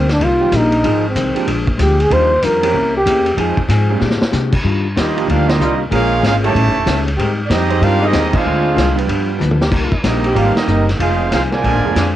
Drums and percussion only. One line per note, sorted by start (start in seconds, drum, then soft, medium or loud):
0.09 snare medium
0.09 ride medium
0.20 kick soft
0.20 ride medium
0.52 kick soft
0.52 hi-hat pedal medium
0.52 ride medium
0.72 ride medium
0.84 kick soft
0.84 ride medium
1.16 kick soft
1.16 hi-hat pedal medium
1.16 ride medium
1.36 ride medium
1.47 kick soft
1.47 ride medium
1.67 kick medium
1.79 kick soft
1.79 hi-hat pedal medium
1.79 ride medium
2.00 ride medium
2.11 kick soft
2.11 ride medium
2.42 kick soft
2.42 hi-hat pedal medium
2.42 ride medium
2.63 ride medium
2.74 kick soft
3.06 kick soft
3.06 hi-hat pedal medium
3.06 ride medium
3.26 ride medium
3.37 kick soft
3.37 ride medium
3.57 kick medium
3.69 kick soft
3.69 hi-hat pedal medium
3.69 ride medium
4.00 snare medium
4.10 snare medium
4.21 snare loud
4.32 snare medium
4.32 hi-hat pedal medium
4.52 kick medium
4.52 crash loud
4.64 kick soft
4.96 kick soft
4.96 snare medium
4.96 hi-hat pedal medium
4.96 ride medium
5.18 ride medium
5.28 kick soft
5.28 ride medium
5.49 snare medium
5.49 ride medium
5.61 hi-hat pedal medium
5.91 kick soft
5.91 ride medium
6.23 kick soft
6.23 snare medium
6.23 hi-hat pedal medium
6.23 ride medium
6.44 ride medium
6.55 kick soft
6.55 ride medium
6.87 kick soft
6.87 snare medium
6.87 hi-hat pedal medium
6.87 ride medium
7.08 ride medium
7.19 kick soft
7.19 ride medium
7.50 kick soft
7.50 snare medium
7.50 hi-hat pedal medium
7.50 ride medium
7.70 ride medium
7.82 kick soft
7.82 ride medium
8.13 kick soft
8.13 snare medium
8.13 hi-hat pedal medium
8.13 ride medium
8.33 kick loud
8.33 crash medium
8.77 kick soft
8.77 snare medium
8.77 hi-hat pedal medium
8.77 ride medium
8.98 ride medium
9.09 kick soft
9.09 ride medium
9.41 hi-hat pedal medium
9.41 mid tom medium
9.51 mid tom medium
9.61 snare loud
9.72 kick medium
9.72 crash loud
9.92 kick medium
10.04 kick soft
10.04 snare medium
10.04 hi-hat pedal medium
10.04 ride medium
10.24 ride medium
10.36 kick soft
10.36 ride medium
10.57 snare medium
10.57 ride medium
10.68 hi-hat pedal medium
10.89 snare soft
10.89 ride medium
11.00 kick soft
11.00 ride medium
11.32 kick soft
11.32 snare medium
11.32 hi-hat pedal medium
11.32 ride medium
11.52 snare medium
11.52 ride medium
11.64 kick soft
11.64 ride medium
11.96 kick soft
11.96 snare medium
11.96 hi-hat pedal medium
11.96 ride medium